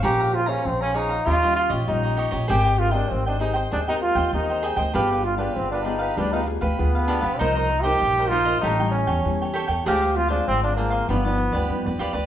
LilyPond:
<<
  \new Staff \with { instrumentName = "Cavaquinho" } { \time 4/4 \key g \phrygian \tempo 4 = 98 <aes' des'' f'' bes''>16 <des'' f'' bes''>16 r16 <des'' f'' bes''>8 <des'' f'' bes''>16 <aes' des'' f'' bes''>16 <des'' f'' bes''>16 <ees' g' des'' ees''>16 <g' des'' ees''>16 r16 <g' des'' ees''>8 <g' des'' ees''>16 <ees' g' des'' ees''>16 <g' des'' ees''>16 | <aes' c'' ees'' g''>16 <c'' ees'' g''>16 r16 <c'' ees'' g''>8 <c'' ees'' g''>16 <aes' c'' ees'' g''>16 <c'' ees'' g''>16 <aes' c'' ees'' g''>16 <c'' ees'' g''>16 r16 <c'' ees'' g''>8 <c'' ees'' g''>16 <aes' c'' ees'' g''>16 <c'' ees'' g''>16 | <d' g' b' f''>16 <g' b' f''>16 r16 <g' b' f''>8 <g' b' f''>16 <d' g' b' f''>16 <g' b' f''>16 <d' g' b' f''>16 <g' b' f''>16 r16 <g' b' f''>8 <g' b' f''>16 <d' g' b' f''>16 <g' b' f''>16 | <ees' bes' c'' ees''>16 <bes' c'' ees''>16 r16 <bes' c'' ees''>8 <bes' c'' ees''>16 <ees' bes' c'' ees''>16 <bes' c'' ees''>16 <g' a' cis'' g''>16 <a' cis'' g''>16 r16 <a' cis'' g''>8 <a' cis'' g''>16 <g' a' cis'' g''>16 <a' cis'' g''>16 |
<d' aes' c'' f''>16 <aes' c'' f''>16 r16 <aes' c'' f''>8 <aes' c'' f''>16 <d' aes' c'' f''>16 <aes' c'' f''>16 <f' g' b' d''>16 <g' b' d''>16 r16 <g' b' d''>8 <g' b' d''>16 <f' g' b' d''>16 <g' b' d''>16 | }
  \new Staff \with { instrumentName = "Trombone" } { \time 4/4 \key g \phrygian g'8 f'16 des'16 c'16 des'16 ees'8 f'8 f'8 ees'8. r16 | g'8 f'16 d'16 c'16 d'16 ees'8 d'16 ees'16 f'8 ees'8. r16 | g'8 f'16 d'16 c'16 d'16 ees'8 d'16 ees'16 r8 b4 | ees'8. g'8. f'8 ees'8 cis'4 r8 |
g'8 f'16 d'16 c'16 d'16 bes8 b4. r8 | }
  \new Staff \with { instrumentName = "Nylon-string guitar" } { \time 4/4 \key g \phrygian << { <des' aes' c''>8 <des' aes' c''>16 <des' aes' c''>8. <des' aes' c''>16 r16 <g des' f'>16 <g des' f'>8. <g des' f'>4 | <c' g' bes'>16 r16 <c' g' bes'>16 <c' g' bes'>8. <c' g' bes'>8. <c' g' bes'>8. <c' g' bes'>4 | <b f' aes'>8 r16 <b f' aes'>8. <b f' aes'>8. <b f' aes'>16 <b f' aes'>16 r16 <b f' aes'>8. r16 | <f bes ees'>8 r16 <f bes ees'>8. <f bes ees'>16 r16 <g cis' e'>16 <g cis' e'>8. <g cis' e'>8. r16 |
<aes c' f'>16 r16 <aes c' f'>16 <aes c' f'>8. <aes c' f'>8 <f b ees'>16 <f b ees'>8. <f b ees'>8. r16 | } \\ { bes4 f4 ees4 bes,4 | aes4 ees4 aes4 ees4 | g4 d4 g4 d4 | c4 g,4 a,4 e4 |
d4 d4 g,4 r4 | } >> }
  \new Staff \with { instrumentName = "Upright bass" } { \clef bass \time 4/4 \key g \phrygian bes,,4 bes,,4 ees,8. bes,,16 bes,,8. bes,,16 | aes,,4 aes,,4 ees,8. ees,16 ees,8. d,16 | g,,4 g,,4 d,8. d,16 d,8. b,,16 | c,4 bes,,4 a,,8. e,16 e,8. e,16 |
d,4 aes,,4 g,,8. d,16 g,16 f,16 ees,16 d,16 | }
>>